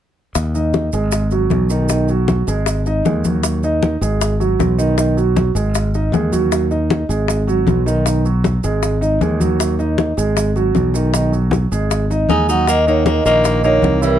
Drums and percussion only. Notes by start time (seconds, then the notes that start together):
0.35 high bongo, high conga, maracas
0.55 high conga, maracas
0.73 high bongo, high conga, maracas
0.92 high bongo, high conga, maracas
1.12 high bongo, high conga, maracas
1.31 high bongo, high conga, maracas
1.50 high bongo, low bongo, high conga, maracas
1.70 high bongo, high conga, maracas
1.89 high bongo, high conga, maracas
2.08 high conga, maracas
2.28 high bongo, high conga, maracas
2.47 high bongo, maracas
2.66 high bongo, high conga, maracas
2.86 high bongo, high conga, maracas
3.05 high bongo, low bongo, high conga, maracas
3.24 high bongo, high conga, maracas
3.43 high bongo, high conga, maracas
3.63 high conga, maracas
3.83 high bongo, high conga, maracas
4.02 high bongo, high conga, maracas
4.21 high bongo, high conga, maracas
4.41 high bongo, high conga, maracas
4.60 high bongo, low bongo, high conga, maracas
4.79 high bongo, high conga, maracas
4.98 high bongo, high conga, maracas
5.17 high conga, maracas
5.36 high bongo, high conga, maracas
5.56 high bongo, maracas
5.75 high bongo, high conga, maracas
5.94 high bongo, high conga, maracas
6.13 high bongo, low bongo, high conga, maracas
6.33 high bongo, high conga, maracas
6.52 high bongo, high conga, maracas
6.71 high conga, maracas
6.90 high bongo, high conga, maracas
7.09 high bongo, high conga, maracas
7.28 high bongo, high conga, maracas
7.48 high bongo, high conga, maracas
7.67 high bongo, low bongo, high conga, maracas
7.86 high bongo, high conga, maracas
8.06 high bongo, high conga, maracas
8.25 high conga, maracas
8.44 high bongo, high conga, maracas
8.64 high bongo, maracas
8.83 high bongo, high conga, maracas
9.02 high bongo, high conga, maracas
9.21 high bongo, low bongo, high conga, maracas
9.41 high bongo, high conga, maracas
9.60 high bongo, high conga, maracas
9.79 high conga, maracas
9.98 high bongo, high conga, maracas
10.17 high bongo, high conga, maracas
10.37 high bongo, high conga, maracas
10.56 high bongo, high conga, maracas
10.75 high bongo, low bongo, high conga, maracas
10.94 high bongo, high conga, maracas
11.14 high bongo, high conga, maracas
11.32 high conga, maracas
11.51 high bongo, high conga, maracas
11.72 high bongo, maracas
11.90 high bongo, high conga, maracas
12.10 high bongo, high conga, maracas
12.29 high bongo, low bongo, high conga, maracas
12.49 high bongo, maracas
12.67 high bongo, high conga, maracas
12.86 high conga, maracas
13.06 high bongo, high conga, maracas
13.25 high bongo, high conga, maracas
13.44 high bongo, high conga, maracas
13.64 high bongo, high conga, maracas
13.82 high bongo, low bongo, high conga, maracas
14.02 high bongo, high conga, maracas